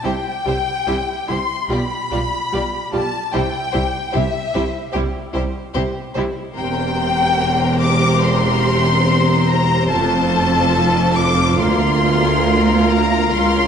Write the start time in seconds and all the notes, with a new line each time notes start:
0.03 C2 C3 G3 E4 G4 C5 G5
0.46 C2 C3 G3 E4 G4 C5
0.87 C2 C3 G3 E4 G4 C5
1.28 C2 C3 G3 E4 G4 C5 C6
1.69 B1 B2 G3 F4 G4 D5 B5
2.10 B1 B2 G3 F4 G4 D5
2.52 B1 B2 G3 F4 G4 D5
2.92 B1 B2 G3 F4 G4 D5 A5
3.33 C2 C3 G3 E4 G4 C5 G5
3.72 C2 C3 G3 E4 G4 C5
4.12 C2 C3 G3 E4 G4 C5 E5
4.53 C2 C3 G3 E4 G4 C5
4.92 C2 C3 G3 E4 G4 C5
5.34 C2 C3 G3 E4 G4 C5
5.73 C2 C3 G3 E4 G4 C5
6.14 C2 C3 G3 E4 G4 C5
6.55 E1 E2 C4 G4 A#4 C5 G5
7.81 D6
8.23 C6
9.48 A#5
9.89 F1 F2 F4 A4 A5
11.16 D6
11.59 D2 A#3 A#4 F5 C6
12.90 A#5
13.33 C#2 C#4 C6